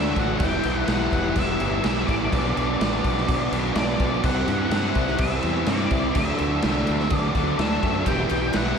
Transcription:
Already playing: fingered electric bass D2, overdriven electric guitar D3 F#3 A3 D4 F#4, lead electric guitar E5
0.15 fingered electric bass A1, overdriven electric guitar A3 D4 F#4, kick, crash
0.19 lead electric guitar F#5
0.37 fingered electric bass E1, overdriven electric guitar E3 G3 B3 E4, lead electric guitar G5, kick, crash
0.63 fingered electric bass B1, overdriven electric guitar G3 B3 E4, crash
0.76 lead electric guitar F#5
0.86 fingered electric bass B1, overdriven electric guitar E3 G3 B3 E4, lead electric guitar F#5, snare, crash
1.12 fingered electric bass E1, lead electric guitar F#5, kick, crash
1.33 fingered electric bass E1, overdriven electric guitar E3 G3 B3 E4, kick, crash
1.39 lead electric guitar E5
1.58 fingered electric bass G1, overdriven electric guitar G3 B3 E4, crash
1.82 fingered electric bass B1, overdriven electric guitar E3 G3 B3 E4, lead electric guitar E5, snare, crash
2.07 fingered electric bass A1, overdriven electric guitar G3 B3 E4, lead electric guitar D5, kick, crash
2.30 fingered electric bass B1, overdriven electric guitar B2 F#3 B3 D4, kick, crash
2.55 fingered electric bass B1, overdriven electric guitar F#3 B3 D4, crash
2.79 fingered electric bass A1, overdriven electric guitar B2 F#3 B3 D4, snare, crash
3.04 fingered electric bass B1, kick, crash
3.17 snare
3.26 overdriven electric guitar B2 F#3 B3 D4, fingered electric bass B2, kick, crash
3.51 fingered electric bass B1, overdriven electric guitar F#3 B3 D4, crash
3.75 fingered electric bass B1, overdriven electric guitar B2 F#3 B3 D4, lead electric guitar D5, snare, crash
3.99 fingered electric bass B1, overdriven electric guitar F#3 B3 D4, kick, crash
4.23 fingered electric bass C2, overdriven electric guitar C3 G3 C4 E4, lead electric guitar F#5, kick, crash
4.47 fingered electric bass G2, overdriven electric guitar G3 C4 E4, crash
4.70 fingered electric bass G2, overdriven electric guitar C3 G3 C4 E4, snare, crash
4.74 lead electric guitar F#5
4.95 fingered electric bass C2, kick, crash
5.08 snare
5.17 fingered electric bass C2, overdriven electric guitar C3 G3 C4 E4, lead electric guitar E5, kick, crash
5.43 fingered electric bass E2, overdriven electric guitar G3 C4 E4, crash
5.66 fingered electric bass G2, overdriven electric guitar C3 G3 C4 E4, lead electric guitar D5, snare, crash
5.91 fingered electric bass C2, overdriven electric guitar G3 C4 E4, kick, crash
6.15 fingered electric bass D2, overdriven electric guitar D3 F#3 A3 D4, lead electric guitar E5, kick, crash
6.38 fingered electric bass D2, overdriven electric guitar F#3 A3 D4, crash
6.62 fingered electric bass C2, overdriven electric guitar D3 F#3 A3, snare, crash
6.66 overdriven electric guitar D4
6.87 fingered electric bass D2, crash
6.99 snare
7.10 overdriven electric guitar D3 F#3 A3 D4, fingered electric bass D3, kick, crash
7.16 lead electric guitar D5
7.35 fingered electric bass D2, overdriven electric guitar F#3 A3 D4, kick, crash
7.58 fingered electric bass D2, overdriven electric guitar D3 F#3 A3 D4, lead electric guitar E5, snare, crash
7.83 fingered electric bass F#2, overdriven electric guitar F#3 A3 D4, kick, crash
8.05 fingered electric bass E1, overdriven electric guitar E3 G3 B3 E4, lead electric guitar G5, kick, crash
8.29 fingered electric bass B1, overdriven electric guitar G3 B3 E4, crash
8.53 fingered electric bass B1, overdriven electric guitar E3 G3 B3 E4, lead electric guitar F#5, snare, crash

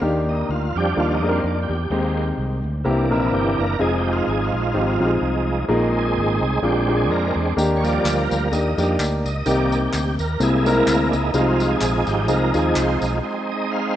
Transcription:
0.01 fingered electric bass D#2, grand piano D#3 A#3 D4 D#4 G4
0.29 tonewheel organ D#4
0.49 fingered electric bass D2, tonewheel organ F4
0.76 fingered electric bass F2, tonewheel organ F3 G3 D4 G4
0.97 fingered electric bass D#2, grand piano A#3 D4 D#4 F4, tonewheel organ F4
1.13 tonewheel organ D#4
1.23 fingered electric bass F2, grand piano A#3 D4 D#4 G#4
1.29 tonewheel organ C4, grand piano A#4
1.44 fingered electric bass F2, tonewheel organ D4
1.62 tonewheel organ G4
1.69 fingered electric bass E2
1.90 fingered electric bass D#2, grand piano D#3 G#3 C4 D#4 G4, tonewheel organ G#3 A#3 C4
2.38 fingered electric bass C2
2.64 fingered electric bass D2
2.84 fingered electric bass C2, grand piano C3 A#3 C4 E4 G4, tonewheel organ E3 A#3 D4
3.11 fingered electric bass A#1, grand piano A#3 C4 D#4 A#4, tonewheel organ E4
3.16 grand piano E4
3.32 fingered electric bass G1, tonewheel organ G4
3.59 fingered electric bass F#1, tonewheel organ A#4
3.79 fingered electric bass F1, tonewheel organ F3 G#3 D#4 G#4, grand piano C4 D#4 F4 G#4
3.98 tonewheel organ G4
4.11 tonewheel organ F4 G4
4.27 fingered electric bass G#1, tonewheel organ G#4
4.45 tonewheel organ F4
4.53 fingered electric bass A#1
4.74 fingered electric bass G#1, grand piano C4 D#4 F4 G4
5.00 fingered electric bass A#1, grand piano C4 D#4 F4 G4
5.06 grand piano G#4
5.21 fingered electric bass C2
5.69 fingered electric bass A#1, grand piano A#2 A#3 D#4 F4 G#4, tonewheel organ G#3 C4 D#4
5.98 tonewheel organ G#4
6.16 fingered electric bass G#1
6.42 fingered electric bass C2, tonewheel organ G#4
6.62 fingered electric bass A#1, grand piano A#2 A#3 D4 F4 G#4, tonewheel organ G#3 C4 D4 G4
6.88 grand piano A#3 D4 F4 G#4
6.97 tonewheel organ G#4
7.10 fingered electric bass F2, tonewheel organ A#4
7.36 fingered electric bass E2
7.57 fingered electric bass D#2, grand piano D#3 A#3 D4 D#4 G4, tambourine
7.76 tonewheel organ C#5
7.83 tonewheel organ F3 G3 A#3 D5, tambourine
8.04 fingered electric bass D2, clap, tambourine
8.21 tonewheel organ A#4
8.31 fingered electric bass D2, tambourine
8.52 fingered electric bass D#2, grand piano A#3 D4 D#4 G4, tonewheel organ D#5, tambourine
8.78 fingered electric bass F2, tonewheel organ F3 G3 D4, grand piano A#3 D4 D#4 G4, tambourine
8.99 fingered electric bass D2, clap, tambourine
9.25 fingered electric bass C#2, tonewheel organ D#5, tambourine
9.45 fingered electric bass C2, grand piano C3 A#3 C4 D#4 G4, tonewheel organ D#3 A#3 G4 D5, tambourine
9.72 tambourine
9.93 fingered electric bass D2, clap, tambourine
10.19 fingered electric bass D#2, tonewheel organ A#4, tambourine
10.40 fingered electric bass C2, grand piano C3 A#3 C4 E4 G#4, tonewheel organ G#3 A#3 E4 G#4, tambourine
10.66 grand piano A#3 C4 D#4 A#4, tonewheel organ A#4, tambourine
10.72 grand piano E4
10.87 fingered electric bass D2, clap, tambourine
11.09 tonewheel organ D4
11.13 fingered electric bass C#2, tonewheel organ D#4, tambourine
11.34 fingered electric bass C2, grand piano C3 C4 D#4 F4 G#4, tonewheel organ F3 G#3 D#4 F4, tambourine
11.60 tambourine
11.72 tonewheel organ G#4
11.81 fingered electric bass A#1, clap, tambourine
12.07 fingered electric bass G#1, tonewheel organ G4, tambourine
12.28 fingered electric bass C2, grand piano C4 D#4 F4 G#4, tonewheel organ A#4, tambourine
12.54 fingered electric bass D#2, grand piano C4 D#4 F4 G#4, tonewheel organ G#4, tambourine
12.75 fingered electric bass C2, tonewheel organ C5, clap, tambourine
13.01 fingered electric bass B1, tambourine
13.23 tonewheel organ G#3 C4 D#4
13.52 tonewheel organ D#5
13.71 tonewheel organ F5

